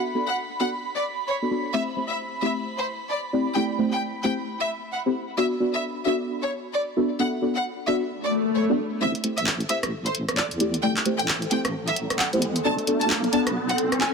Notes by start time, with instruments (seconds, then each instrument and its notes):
Already playing: synth stab B3 D4 F#4 A4 E5, analog synth pad B5
0.15 synth stab B3 D4 F#4 A4 D5
0.28 violin section F#5
0.60 synth stab B3 D4 F#4 A4 D5, violin section F#5
0.97 violin section D5
1.28 violin section C#5
1.42 synth stab B3 D4 F#4 A4 D5
1.51 synth stab B3 D4 F#4 A4 D5
1.74 synth stab A3 C4 E4 G4 C5, violin section E5
1.97 synth stab A3 C4 E4 G4 C5
2.10 violin section E5
2.42 synth stab A3 C4 E4 G4 C5, violin section E5
2.79 violin section C5
3.10 violin section D5
3.33 synth stab A3 C4 E4 G4 D5
3.56 synth stab A3 C4 E4 G4 D5, violin section G5
3.78 synth stab A3 C4 E4 G4 C5
3.92 violin section G5
4.24 synth stab A3 C4 E4 G4 C5, violin section G5
4.60 violin section E5
4.92 violin section F#5
5.06 synth stab A3 C4 E4 G4 C5
5.38 synth stab B3 D4 F#4 A4 D5, violin section E5
5.60 synth stab B3 D4 F#4 A4 D5
5.74 violin section E5
6.06 synth stab B3 D4 F#4 A4 D5, violin section E5
6.42 violin section C#5
6.74 violin section D5
6.96 synth stab B3 D4 F#4 A4 E5
7.19 synth stab B3 D4 F#4 A4 E5, violin section F#5
7.42 synth stab B3 D4 F#4 A4 D5
7.56 violin section F#5
7.87 synth stab B3 D4 F#4 A4 D5, violin section E5
8.10 swell
8.24 violin section D5
8.56 violin section C#5
8.69 synth stab B3 D4 F#4 A4 D5
9.01 wobble bass A1, synth stab A3 C4 E4 G4 C5, analog synth pad A4, violin section E5, riser
9.15 closed hi-hat
9.24 synth stab A3 C4 E4 G4 C5, closed hi-hat
9.38 wobble bass A1, violin section E5, closed hi-hat
9.47 clap
9.60 closed hi-hat
9.69 synth stab A3 C4 E4 G4 C5, violin section E5, closed hi-hat
9.83 wobble bass A1, cross-stick, closed hi-hat
10.06 violin section C5, closed hi-hat
10.15 wobble bass A1, closed hi-hat
10.29 cross-stick, closed hi-hat
10.37 violin section D5, clap
10.51 wobble bass E2, closed hi-hat
10.60 synth stab A3 C4 E4 G4 D5, closed hi-hat
10.74 closed hi-hat
10.83 wobble bass A1, synth stab A3 C4 E4 G4 D5, violin section G5
10.97 clap, closed hi-hat
11.06 synth stab A3 C4 E4 G4 C5, closed hi-hat
11.19 wobble bass A1, violin section G5, closed hi-hat
11.28 clap
11.42 closed hi-hat
11.51 synth stab A3 C4 E4 G4 C5, violin section G5, closed hi-hat
11.65 wobble bass A1, cross-stick, closed hi-hat
11.88 violin section E5, closed hi-hat
11.96 wobble bass A1, closed hi-hat
12.10 cross-stick, closed hi-hat
12.19 violin section F#5, clap
12.33 wobble bass E2, synth stab A3 C4 E4 G4 C5, closed hi-hat
12.42 closed hi-hat
12.56 closed hi-hat
12.65 wobble bass B1, synth stab B3 D4 F#4 A4 D5, violin section A5
12.79 closed hi-hat
12.87 synth stab B3 D4 F#4 A4 D5, closed hi-hat
13.01 wobble bass B1, violin section A5, closed hi-hat
13.10 clap
13.24 closed hi-hat
13.33 synth stab B3 D4 F#4 A4 D5, violin section A5, closed hi-hat
13.47 wobble bass B1, cross-stick, closed hi-hat
13.69 violin section F#5, closed hi-hat
13.78 wobble bass B1, closed hi-hat
13.92 cross-stick, closed hi-hat
14.01 violin section G#5, clap